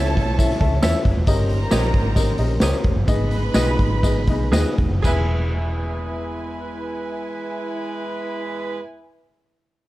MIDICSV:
0, 0, Header, 1, 7, 480
1, 0, Start_track
1, 0, Key_signature, 4, "major"
1, 0, Tempo, 445765
1, 1374, Time_signature, 4, 2, 24, 8
1, 2823, Tempo, 472441
1, 4263, Tempo, 505051
1, 5223, Tempo, 522193
1, 9665, End_track
2, 0, Start_track
2, 0, Title_t, "Clean electric guitar"
2, 0, Program_c, 0, 27
2, 888, Note_on_c, 0, 69, 91
2, 894, Note_on_c, 0, 73, 93
2, 901, Note_on_c, 0, 76, 97
2, 1046, Note_off_c, 0, 69, 0
2, 1049, Note_off_c, 0, 73, 0
2, 1053, Note_off_c, 0, 76, 0
2, 1840, Note_on_c, 0, 67, 83
2, 1849, Note_on_c, 0, 73, 97
2, 1855, Note_on_c, 0, 75, 89
2, 2001, Note_off_c, 0, 67, 0
2, 2005, Note_off_c, 0, 73, 0
2, 2008, Note_off_c, 0, 75, 0
2, 2818, Note_on_c, 0, 67, 93
2, 2823, Note_on_c, 0, 73, 91
2, 2831, Note_on_c, 0, 75, 97
2, 2971, Note_off_c, 0, 67, 0
2, 2973, Note_off_c, 0, 73, 0
2, 2977, Note_off_c, 0, 75, 0
2, 3758, Note_on_c, 0, 68, 72
2, 3764, Note_on_c, 0, 71, 73
2, 3770, Note_on_c, 0, 75, 86
2, 3922, Note_off_c, 0, 68, 0
2, 3924, Note_off_c, 0, 71, 0
2, 3927, Note_off_c, 0, 75, 0
2, 4718, Note_on_c, 0, 68, 78
2, 4723, Note_on_c, 0, 71, 79
2, 4731, Note_on_c, 0, 75, 80
2, 4882, Note_off_c, 0, 68, 0
2, 4884, Note_off_c, 0, 71, 0
2, 4888, Note_off_c, 0, 75, 0
2, 5200, Note_on_c, 0, 68, 73
2, 5225, Note_on_c, 0, 71, 81
2, 5246, Note_on_c, 0, 76, 95
2, 8692, Note_off_c, 0, 68, 0
2, 8716, Note_off_c, 0, 71, 0
2, 8736, Note_off_c, 0, 76, 0
2, 9665, End_track
3, 0, Start_track
3, 0, Title_t, "Violin section"
3, 0, Program_c, 1, 48
3, 0, Note_on_c, 1, 69, 91
3, 0, Note_on_c, 1, 81, 109
3, 1101, Note_off_c, 1, 69, 0
3, 1101, Note_off_c, 1, 81, 0
3, 1365, Note_on_c, 1, 82, 100
3, 1369, Note_on_c, 1, 70, 95
3, 3020, Note_off_c, 1, 82, 0
3, 3023, Note_off_c, 1, 70, 0
3, 3279, Note_on_c, 1, 71, 89
3, 3282, Note_on_c, 1, 83, 98
3, 4938, Note_off_c, 1, 71, 0
3, 4940, Note_off_c, 1, 83, 0
3, 5206, Note_on_c, 1, 80, 90
3, 5209, Note_on_c, 1, 71, 80
3, 5212, Note_on_c, 1, 64, 81
3, 8661, Note_off_c, 1, 80, 0
3, 8664, Note_off_c, 1, 71, 0
3, 8666, Note_off_c, 1, 64, 0
3, 9665, End_track
4, 0, Start_track
4, 0, Title_t, "Upright piano"
4, 0, Program_c, 2, 0
4, 0, Note_on_c, 2, 45, 79
4, 0, Note_on_c, 2, 61, 81
4, 0, Note_on_c, 2, 64, 77
4, 0, Note_on_c, 2, 69, 82
4, 0, Note_on_c, 2, 76, 98
4, 141, Note_off_c, 2, 45, 0
4, 254, Note_off_c, 2, 61, 0
4, 254, Note_off_c, 2, 64, 0
4, 256, Note_off_c, 2, 69, 0
4, 257, Note_off_c, 2, 76, 0
4, 410, Note_on_c, 2, 64, 81
4, 413, Note_on_c, 2, 61, 89
4, 413, Note_on_c, 2, 69, 77
4, 416, Note_on_c, 2, 76, 94
4, 572, Note_off_c, 2, 64, 0
4, 573, Note_off_c, 2, 61, 0
4, 573, Note_off_c, 2, 69, 0
4, 574, Note_off_c, 2, 76, 0
4, 649, Note_on_c, 2, 61, 86
4, 653, Note_on_c, 2, 76, 89
4, 654, Note_on_c, 2, 64, 73
4, 654, Note_on_c, 2, 69, 81
4, 810, Note_off_c, 2, 61, 0
4, 812, Note_off_c, 2, 76, 0
4, 813, Note_off_c, 2, 64, 0
4, 813, Note_off_c, 2, 69, 0
4, 884, Note_on_c, 2, 64, 85
4, 887, Note_on_c, 2, 61, 92
4, 887, Note_on_c, 2, 76, 97
4, 891, Note_on_c, 2, 69, 79
4, 1203, Note_off_c, 2, 64, 0
4, 1205, Note_off_c, 2, 61, 0
4, 1205, Note_off_c, 2, 76, 0
4, 1207, Note_off_c, 2, 69, 0
4, 1368, Note_on_c, 2, 61, 115
4, 1370, Note_on_c, 2, 67, 111
4, 1371, Note_on_c, 2, 43, 72
4, 1371, Note_on_c, 2, 70, 96
4, 1373, Note_on_c, 2, 75, 127
4, 1685, Note_off_c, 2, 61, 0
4, 1686, Note_off_c, 2, 67, 0
4, 1686, Note_off_c, 2, 70, 0
4, 1687, Note_off_c, 2, 75, 0
4, 1843, Note_on_c, 2, 61, 89
4, 1848, Note_on_c, 2, 67, 76
4, 1848, Note_on_c, 2, 75, 92
4, 1849, Note_on_c, 2, 70, 79
4, 2049, Note_off_c, 2, 43, 0
4, 2164, Note_off_c, 2, 61, 0
4, 2166, Note_off_c, 2, 67, 0
4, 2166, Note_off_c, 2, 75, 0
4, 2167, Note_off_c, 2, 70, 0
4, 2317, Note_on_c, 2, 75, 95
4, 2319, Note_on_c, 2, 67, 82
4, 2321, Note_on_c, 2, 61, 85
4, 2321, Note_on_c, 2, 70, 84
4, 2485, Note_off_c, 2, 75, 0
4, 2487, Note_off_c, 2, 61, 0
4, 2487, Note_off_c, 2, 67, 0
4, 2487, Note_off_c, 2, 70, 0
4, 2569, Note_on_c, 2, 70, 70
4, 2570, Note_on_c, 2, 75, 88
4, 2573, Note_on_c, 2, 61, 84
4, 2573, Note_on_c, 2, 67, 76
4, 2734, Note_off_c, 2, 70, 0
4, 2735, Note_off_c, 2, 75, 0
4, 2736, Note_off_c, 2, 61, 0
4, 2736, Note_off_c, 2, 67, 0
4, 2816, Note_on_c, 2, 61, 90
4, 2819, Note_on_c, 2, 67, 86
4, 2823, Note_on_c, 2, 70, 83
4, 2823, Note_on_c, 2, 72, 94
4, 3127, Note_off_c, 2, 61, 0
4, 3128, Note_off_c, 2, 67, 0
4, 3130, Note_off_c, 2, 70, 0
4, 3130, Note_off_c, 2, 72, 0
4, 3282, Note_on_c, 2, 59, 110
4, 3284, Note_on_c, 2, 68, 106
4, 3286, Note_on_c, 2, 44, 70
4, 3288, Note_on_c, 2, 63, 105
4, 3292, Note_on_c, 2, 75, 124
4, 3601, Note_off_c, 2, 59, 0
4, 3601, Note_off_c, 2, 68, 0
4, 3604, Note_off_c, 2, 63, 0
4, 3605, Note_off_c, 2, 75, 0
4, 3760, Note_on_c, 2, 59, 80
4, 3760, Note_on_c, 2, 63, 82
4, 3765, Note_on_c, 2, 68, 79
4, 3767, Note_on_c, 2, 75, 85
4, 3972, Note_off_c, 2, 44, 0
4, 4087, Note_off_c, 2, 59, 0
4, 4087, Note_off_c, 2, 63, 0
4, 4089, Note_off_c, 2, 68, 0
4, 4090, Note_off_c, 2, 75, 0
4, 4253, Note_on_c, 2, 68, 70
4, 4254, Note_on_c, 2, 63, 79
4, 4255, Note_on_c, 2, 75, 97
4, 4256, Note_on_c, 2, 59, 82
4, 4412, Note_off_c, 2, 63, 0
4, 4412, Note_off_c, 2, 68, 0
4, 4413, Note_off_c, 2, 59, 0
4, 4413, Note_off_c, 2, 75, 0
4, 4501, Note_on_c, 2, 63, 72
4, 4502, Note_on_c, 2, 59, 77
4, 4508, Note_on_c, 2, 68, 72
4, 4508, Note_on_c, 2, 75, 87
4, 4655, Note_off_c, 2, 59, 0
4, 4655, Note_off_c, 2, 63, 0
4, 4658, Note_off_c, 2, 68, 0
4, 4658, Note_off_c, 2, 75, 0
4, 4732, Note_on_c, 2, 59, 88
4, 4732, Note_on_c, 2, 68, 83
4, 4734, Note_on_c, 2, 63, 85
4, 4738, Note_on_c, 2, 75, 94
4, 5051, Note_off_c, 2, 59, 0
4, 5052, Note_off_c, 2, 68, 0
4, 5053, Note_off_c, 2, 63, 0
4, 5054, Note_off_c, 2, 75, 0
4, 5201, Note_on_c, 2, 59, 77
4, 5210, Note_on_c, 2, 64, 70
4, 5212, Note_on_c, 2, 40, 80
4, 5222, Note_on_c, 2, 68, 72
4, 5233, Note_on_c, 2, 76, 90
4, 8655, Note_off_c, 2, 59, 0
4, 8665, Note_off_c, 2, 64, 0
4, 8666, Note_off_c, 2, 40, 0
4, 8677, Note_off_c, 2, 68, 0
4, 8687, Note_off_c, 2, 76, 0
4, 9665, End_track
5, 0, Start_track
5, 0, Title_t, "Horn section"
5, 0, Program_c, 3, 61
5, 0, Note_on_c, 3, 57, 84
5, 0, Note_on_c, 3, 64, 77
5, 0, Note_on_c, 3, 73, 93
5, 1096, Note_off_c, 3, 57, 0
5, 1096, Note_off_c, 3, 64, 0
5, 1096, Note_off_c, 3, 73, 0
5, 1365, Note_on_c, 3, 63, 82
5, 1366, Note_on_c, 3, 55, 89
5, 1371, Note_on_c, 3, 72, 88
5, 3021, Note_off_c, 3, 55, 0
5, 3021, Note_off_c, 3, 63, 0
5, 3023, Note_off_c, 3, 72, 0
5, 3272, Note_on_c, 3, 56, 87
5, 3274, Note_on_c, 3, 71, 97
5, 3277, Note_on_c, 3, 63, 83
5, 4935, Note_off_c, 3, 56, 0
5, 4936, Note_off_c, 3, 71, 0
5, 4937, Note_off_c, 3, 63, 0
5, 5216, Note_on_c, 3, 64, 84
5, 5218, Note_on_c, 3, 71, 95
5, 5220, Note_on_c, 3, 56, 85
5, 8670, Note_off_c, 3, 64, 0
5, 8672, Note_off_c, 3, 71, 0
5, 8674, Note_off_c, 3, 56, 0
5, 9665, End_track
6, 0, Start_track
6, 0, Title_t, "Fingered electric bass"
6, 0, Program_c, 4, 33
6, 0, Note_on_c, 4, 37, 101
6, 179, Note_off_c, 4, 37, 0
6, 179, Note_on_c, 4, 35, 90
6, 582, Note_off_c, 4, 35, 0
6, 652, Note_on_c, 4, 37, 98
6, 856, Note_off_c, 4, 37, 0
6, 891, Note_on_c, 4, 40, 102
6, 994, Note_off_c, 4, 40, 0
6, 1131, Note_on_c, 4, 30, 85
6, 1233, Note_off_c, 4, 30, 0
6, 1259, Note_on_c, 4, 28, 97
6, 1358, Note_off_c, 4, 28, 0
6, 1370, Note_on_c, 4, 31, 110
6, 1775, Note_off_c, 4, 31, 0
6, 1854, Note_on_c, 4, 34, 98
6, 2056, Note_off_c, 4, 34, 0
6, 2091, Note_on_c, 4, 32, 88
6, 2501, Note_off_c, 4, 32, 0
6, 2570, Note_on_c, 4, 34, 98
6, 2780, Note_off_c, 4, 34, 0
6, 2818, Note_on_c, 4, 37, 96
6, 2919, Note_off_c, 4, 37, 0
6, 3051, Note_on_c, 4, 29, 82
6, 3152, Note_off_c, 4, 29, 0
6, 3171, Note_on_c, 4, 31, 102
6, 3272, Note_off_c, 4, 31, 0
6, 3286, Note_on_c, 4, 32, 100
6, 3693, Note_off_c, 4, 32, 0
6, 3761, Note_on_c, 4, 35, 85
6, 3971, Note_off_c, 4, 35, 0
6, 4013, Note_on_c, 4, 32, 75
6, 4488, Note_off_c, 4, 32, 0
6, 4488, Note_on_c, 4, 35, 91
6, 4693, Note_off_c, 4, 35, 0
6, 4717, Note_on_c, 4, 39, 86
6, 4826, Note_off_c, 4, 39, 0
6, 4971, Note_on_c, 4, 28, 85
6, 5077, Note_off_c, 4, 28, 0
6, 5084, Note_on_c, 4, 30, 92
6, 5195, Note_off_c, 4, 30, 0
6, 5217, Note_on_c, 4, 28, 95
6, 8672, Note_off_c, 4, 28, 0
6, 9665, End_track
7, 0, Start_track
7, 0, Title_t, "Drums"
7, 63, Note_on_c, 9, 42, 61
7, 171, Note_off_c, 9, 42, 0
7, 183, Note_on_c, 9, 36, 84
7, 188, Note_on_c, 9, 42, 75
7, 290, Note_off_c, 9, 36, 0
7, 296, Note_off_c, 9, 42, 0
7, 418, Note_on_c, 9, 36, 82
7, 418, Note_on_c, 9, 42, 79
7, 427, Note_on_c, 9, 54, 86
7, 525, Note_off_c, 9, 36, 0
7, 525, Note_off_c, 9, 42, 0
7, 534, Note_off_c, 9, 54, 0
7, 542, Note_on_c, 9, 42, 48
7, 548, Note_on_c, 9, 38, 37
7, 649, Note_off_c, 9, 42, 0
7, 653, Note_on_c, 9, 42, 66
7, 654, Note_on_c, 9, 36, 88
7, 656, Note_off_c, 9, 38, 0
7, 761, Note_off_c, 9, 42, 0
7, 762, Note_off_c, 9, 36, 0
7, 889, Note_on_c, 9, 54, 97
7, 891, Note_on_c, 9, 38, 110
7, 898, Note_on_c, 9, 42, 94
7, 996, Note_off_c, 9, 54, 0
7, 999, Note_off_c, 9, 38, 0
7, 1005, Note_off_c, 9, 42, 0
7, 1020, Note_on_c, 9, 38, 36
7, 1128, Note_off_c, 9, 38, 0
7, 1130, Note_on_c, 9, 42, 58
7, 1133, Note_on_c, 9, 36, 90
7, 1238, Note_off_c, 9, 42, 0
7, 1241, Note_off_c, 9, 36, 0
7, 1365, Note_on_c, 9, 42, 96
7, 1371, Note_on_c, 9, 36, 117
7, 1375, Note_on_c, 9, 54, 76
7, 1472, Note_off_c, 9, 42, 0
7, 1479, Note_off_c, 9, 36, 0
7, 1482, Note_off_c, 9, 54, 0
7, 1605, Note_on_c, 9, 42, 70
7, 1713, Note_off_c, 9, 42, 0
7, 1844, Note_on_c, 9, 54, 101
7, 1845, Note_on_c, 9, 38, 110
7, 1846, Note_on_c, 9, 42, 99
7, 1952, Note_off_c, 9, 54, 0
7, 1953, Note_off_c, 9, 38, 0
7, 1953, Note_off_c, 9, 42, 0
7, 1967, Note_on_c, 9, 42, 54
7, 2075, Note_off_c, 9, 42, 0
7, 2085, Note_on_c, 9, 42, 70
7, 2090, Note_on_c, 9, 36, 88
7, 2193, Note_off_c, 9, 42, 0
7, 2197, Note_off_c, 9, 36, 0
7, 2327, Note_on_c, 9, 42, 79
7, 2328, Note_on_c, 9, 36, 85
7, 2333, Note_on_c, 9, 54, 82
7, 2434, Note_off_c, 9, 42, 0
7, 2436, Note_off_c, 9, 36, 0
7, 2440, Note_off_c, 9, 54, 0
7, 2560, Note_on_c, 9, 42, 63
7, 2668, Note_off_c, 9, 42, 0
7, 2801, Note_on_c, 9, 38, 111
7, 2808, Note_on_c, 9, 42, 90
7, 2816, Note_on_c, 9, 54, 90
7, 2904, Note_off_c, 9, 38, 0
7, 2910, Note_off_c, 9, 42, 0
7, 2918, Note_off_c, 9, 54, 0
7, 2932, Note_on_c, 9, 38, 35
7, 3034, Note_off_c, 9, 38, 0
7, 3041, Note_on_c, 9, 42, 54
7, 3050, Note_on_c, 9, 36, 92
7, 3142, Note_off_c, 9, 42, 0
7, 3151, Note_off_c, 9, 36, 0
7, 3286, Note_on_c, 9, 42, 98
7, 3288, Note_on_c, 9, 36, 126
7, 3288, Note_on_c, 9, 54, 82
7, 3387, Note_off_c, 9, 42, 0
7, 3389, Note_off_c, 9, 36, 0
7, 3390, Note_off_c, 9, 54, 0
7, 3522, Note_on_c, 9, 42, 73
7, 3624, Note_off_c, 9, 42, 0
7, 3759, Note_on_c, 9, 38, 108
7, 3759, Note_on_c, 9, 42, 89
7, 3760, Note_on_c, 9, 54, 96
7, 3861, Note_off_c, 9, 38, 0
7, 3861, Note_off_c, 9, 42, 0
7, 3861, Note_off_c, 9, 54, 0
7, 4011, Note_on_c, 9, 36, 86
7, 4014, Note_on_c, 9, 42, 70
7, 4113, Note_off_c, 9, 36, 0
7, 4115, Note_off_c, 9, 42, 0
7, 4256, Note_on_c, 9, 36, 79
7, 4256, Note_on_c, 9, 42, 77
7, 4265, Note_on_c, 9, 54, 79
7, 4352, Note_off_c, 9, 36, 0
7, 4352, Note_off_c, 9, 42, 0
7, 4360, Note_off_c, 9, 54, 0
7, 4484, Note_on_c, 9, 42, 68
7, 4488, Note_on_c, 9, 36, 82
7, 4579, Note_off_c, 9, 42, 0
7, 4583, Note_off_c, 9, 36, 0
7, 4726, Note_on_c, 9, 38, 114
7, 4732, Note_on_c, 9, 42, 93
7, 4732, Note_on_c, 9, 54, 91
7, 4821, Note_off_c, 9, 38, 0
7, 4827, Note_off_c, 9, 42, 0
7, 4827, Note_off_c, 9, 54, 0
7, 4966, Note_on_c, 9, 42, 55
7, 4971, Note_on_c, 9, 36, 86
7, 5061, Note_off_c, 9, 42, 0
7, 5066, Note_off_c, 9, 36, 0
7, 5216, Note_on_c, 9, 36, 95
7, 5218, Note_on_c, 9, 49, 83
7, 5221, Note_on_c, 9, 54, 84
7, 5309, Note_off_c, 9, 36, 0
7, 5310, Note_off_c, 9, 49, 0
7, 5313, Note_off_c, 9, 54, 0
7, 9665, End_track
0, 0, End_of_file